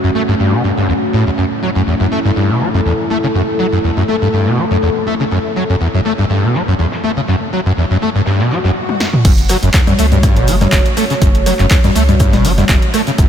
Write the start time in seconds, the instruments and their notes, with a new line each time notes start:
Already playing: analog synth pad A3 C#4 F#4 C#5
0.04 acid bass F#2, snare
0.15 acid bass A3, closed hi-hat
0.28 acid bass G2
0.40 acid bass G2, closed hi-hat
0.53 acid bass B2, snare
0.64 acid bass G2, closed hi-hat
0.77 acid bass G2, snare
0.89 acid bass E2, closed hi-hat
1.13 acid bass A2, closed hi-hat
1.26 acid bass E2, snare
1.38 acid bass F#2, analog synth pad E4 A4, closed hi-hat
1.62 acid bass F#3, snare, closed hi-hat
1.75 acid bass F#2, closed hi-hat
1.87 acid bass E2, closed hi-hat
2.00 acid bass F#2
2.12 acid bass A3, closed hi-hat
2.25 acid bass G2
2.36 acid bass G2, closed hi-hat
2.49 acid bass B2
2.61 acid bass F#3, closed hi-hat
2.74 acid bass F#2, snare
2.86 acid bass E2, closed hi-hat
2.99 closed hi-hat
3.10 acid bass A3, closed hi-hat
3.23 acid bass C#3, snare
3.35 acid bass F#2, closed hi-hat
3.59 acid bass F#3, closed hi-hat
3.72 acid bass F#2
3.84 acid bass E2, open hi-hat
3.97 acid bass F#2, snare
4.08 acid bass A3, closed hi-hat
4.22 acid bass G2
4.33 acid bass G2, closed hi-hat
4.46 acid bass B2, snare
4.58 acid bass F#3, closed hi-hat
4.70 acid bass F#2, snare
4.82 acid bass E2, closed hi-hat
5.07 acid bass A3, closed hi-hat
5.20 acid bass C#3, snare
5.31 acid bass F#2, closed hi-hat
5.55 acid bass F#3, snare, closed hi-hat
5.69 acid bass F#2, closed hi-hat
5.81 acid bass E2, closed hi-hat
5.94 acid bass F#2
6.05 acid bass A3, closed hi-hat
6.18 acid bass G2
6.30 acid bass G2, closed hi-hat
6.43 acid bass B2
6.54 acid bass F#3, snare, closed hi-hat
6.68 acid bass F#2
6.79 acid bass E2, closed hi-hat
6.92 snare, closed hi-hat
7.04 acid bass A3
7.16 acid bass C#3, closed hi-hat
7.28 acid bass F#2, snare, closed hi-hat
7.53 acid bass F#3, closed hi-hat
7.66 acid bass F#2
7.77 acid bass E2, open hi-hat
7.90 acid bass F#2, snare
8.02 acid bass A3, closed hi-hat
8.15 acid bass G2
8.26 acid bass G2, snare, closed hi-hat, swell
8.39 acid bass B2, snare, closed hi-hat
8.51 acid bass F#3, snare, closed hi-hat
8.64 acid bass F#2, snare, closed hi-hat
8.89 high tom
9.00 snare
9.13 mid tom
9.25 sub bass F#1, acid bass F#2, analog synth pad A3 C#4 F#4 C#5, kick, closed hi-hat, crash, shaker
9.38 closed hi-hat
9.49 acid bass F#3, cross-stick, snare, closed hi-hat, open hi-hat, shaker
9.63 sub bass F#1, acid bass F#2, closed hi-hat, shaker
9.73 acid bass E2, kick, snare, clap, closed hi-hat, shaker
9.87 acid bass F#2, cross-stick, closed hi-hat, low conga, shaker
9.99 sub bass C#2, acid bass A3, closed hi-hat, open hi-hat, shaker
10.12 acid bass G2, closed hi-hat, low conga, shaker
10.23 acid bass G2, kick, cross-stick, closed hi-hat, shaker
10.36 sub bass F#1, acid bass B2, closed hi-hat
10.47 acid bass F#3, closed hi-hat, open hi-hat, shaker
10.61 acid bass F#2, cross-stick, snare, closed hi-hat, low conga, shaker
10.72 sub bass F#1, acid bass E2, kick, snare, clap, closed hi-hat, shaker
10.85 closed hi-hat
10.97 acid bass A3, cross-stick, closed hi-hat, open hi-hat, shaker
11.10 acid bass C#3, snare, closed hi-hat, shaker
11.21 sub bass F#1, acid bass F#2, kick, closed hi-hat, shaker
11.35 closed hi-hat
11.46 acid bass F#3, cross-stick, closed hi-hat, open hi-hat, shaker
11.59 sub bass F#1, acid bass F#2, clap, closed hi-hat, shaker
11.70 acid bass E2, kick, snare, clap, closed hi-hat, open hi-hat, shaker
11.83 acid bass F#2, cross-stick, snare, closed hi-hat, low conga, shaker
11.95 sub bass C#2, acid bass A3, closed hi-hat, open hi-hat, shaker
12.09 acid bass G2, closed hi-hat, low conga, shaker
12.19 acid bass G2, kick, cross-stick, closed hi-hat, shaker
12.32 sub bass F#1, acid bass B2, snare, closed hi-hat, low conga
12.45 acid bass F#3, closed hi-hat, open hi-hat, shaker
12.57 acid bass F#2, cross-stick, snare, closed hi-hat, low conga, shaker
12.69 sub bass F#1, acid bass E2, kick, snare, clap, closed hi-hat, shaker
12.82 closed hi-hat
12.94 acid bass A3, cross-stick, closed hi-hat, open hi-hat, shaker
13.07 acid bass C#3, snare, closed hi-hat, shaker
13.18 sub bass F#1, acid bass F#2, analog synth pad E5, kick, closed hi-hat, shaker